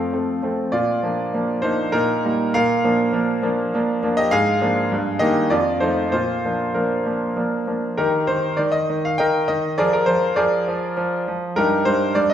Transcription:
0.00 0.14 F2 soft
0.00 0.13 F3 soft
0.00 0.13 A3 soft
0.00 0.14 C4 soft
0.00 0.40 A4 soft
0.00 0.15 C5 medium
0.00 0.43 F5 medium
0.00 0.15 G5 medium
0.13 0.41 F3 soft
0.13 0.41 A3 soft
0.13 0.41 C4 soft
0.42 0.70 F3 soft
0.42 0.71 A3 soft
0.42 0.71 C4 soft
0.72 1.03 A#2 soft
0.72 1.59 F4 medium
0.72 1.63 D5 medium
1.03 1.30 F3 soft
1.03 1.31 A#3 soft
1.03 1.31 D4 soft
1.34 1.61 F3 soft
1.34 1.61 A#3 soft
1.34 1.61 D4 soft
1.62 1.90 F3 soft
1.62 1.90 A#3 soft
1.62 1.90 D4 soft
1.62 1.91 D#4 medium
1.62 1.92 C5 medium
1.92 2.23 A#2 medium
1.92 2.24 D#4 medium
1.92 2.53 A#4 medium
2.25 2.52 G3 soft
2.25 2.52 A#3 soft
2.25 2.53 D#4 soft
2.54 2.84 A#2 medium
2.54 4.15 A#4 medium
2.54 4.18 F5 loud
2.84 3.11 F3 medium
2.84 3.11 A#3 soft
2.84 3.12 D4 medium
3.12 3.40 F3 soft
3.12 3.41 A#3 soft
3.12 3.41 D4 medium
3.42 3.70 F3 medium
3.42 3.71 A#3 medium
3.42 3.71 D4 medium
3.74 4.01 F3 medium
3.74 4.01 A#3 medium
3.74 4.01 D4 medium
4.03 4.30 F3 medium
4.03 4.30 A#3 soft
4.03 4.31 D4 medium
4.17 4.32 G4 medium
4.17 4.32 D#5 medium
4.31 4.61 G#2 medium
4.31 5.17 G#4 medium
4.31 5.21 F5 loud
4.61 4.88 F3 medium
4.61 4.89 A#3 soft
4.61 4.89 D4 medium
4.92 5.21 G2 medium
5.19 5.48 D#3 soft
5.19 5.49 A#3 medium
5.19 5.49 D#4 medium
5.19 5.49 G4 medium
5.19 5.51 D#5 medium
5.50 5.81 F2 medium
5.50 5.80 F4 medium
5.50 5.82 D5 medium
5.80 6.09 F3 soft
5.80 6.09 A3 soft
5.80 6.10 D#4 medium
5.80 6.10 C5 medium
6.12 6.43 A#2 soft
6.12 6.71 F4 medium
6.12 6.74 C5 medium
6.45 6.72 F3 soft
6.45 6.72 A#3 soft
6.45 6.72 D4 soft
6.74 7.03 F3 soft
6.74 7.03 A#3 soft
6.74 7.05 D4 soft
6.74 7.68 A#4 medium
7.06 7.34 F3 soft
7.06 7.34 A#3 soft
7.06 7.34 D4 soft
7.36 7.64 F3 soft
7.36 7.65 A#3 soft
7.36 7.65 D4 soft
7.67 7.95 F3 soft
7.67 7.96 A#3 soft
7.67 7.96 D4 soft
7.97 8.27 D#3 medium
7.97 8.26 D#4 medium
7.97 8.26 G4 medium
7.97 8.28 A#4 medium
8.27 8.57 D#3 soft
8.27 8.58 C5 medium
8.57 8.88 D#3 soft
8.57 8.73 D5 medium
8.72 9.03 D#5 medium
8.90 9.18 D#3 soft
9.05 9.20 F5 medium
9.18 9.47 D#3 medium
9.18 9.47 A#4 medium
9.18 9.46 D#5 medium
9.18 9.49 G5 medium
9.48 9.78 D#3 medium
9.48 9.78 D#5 medium
9.78 10.06 F3 medium
9.78 9.93 G#4 medium
9.78 9.92 A#4 medium
9.78 9.93 D5 medium
9.93 10.08 A#4 medium
10.06 10.35 F3 medium
10.06 10.37 C5 medium
10.36 10.66 F3 medium
10.36 11.23 G#4 medium
10.36 11.23 A#4 medium
10.36 11.26 D5 medium
10.68 10.95 F3 medium
10.97 11.26 F3 medium
11.28 11.56 F3 medium
11.56 11.84 G2 medium
11.56 11.84 D#4 medium
11.56 11.84 G4 medium
11.56 11.86 A#4 medium
11.85 12.14 G2 medium
11.85 12.15 C5 medium
12.15 12.34 G2 medium
12.15 12.30 D5 medium
12.30 12.34 D#5 medium

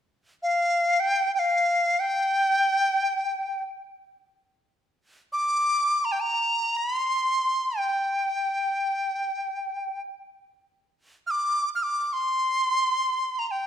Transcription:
0.43 1.01 F5 medium
1.00 1.34 G5 medium
1.34 1.40 G5 medium
1.39 2.01 F5 medium
2.00 3.63 G5 medium
5.33 6.06 D6 medium
6.05 6.13 A#5 medium
6.12 6.23 G5 medium
6.21 6.78 A#5 medium
6.77 6.97 B5 medium
6.97 7.79 C6 medium
7.78 10.01 G5 medium
11.27 11.70 D6 medium
11.27 11.32 F6 medium
11.75 11.84 F6 medium
11.83 12.06 D6 medium
12.06 12.14 D6 medium
12.13 13.40 C6 medium
13.39 13.47 A#5 soft
13.47 13.67 G5 medium
13.47 13.52 A#5 medium

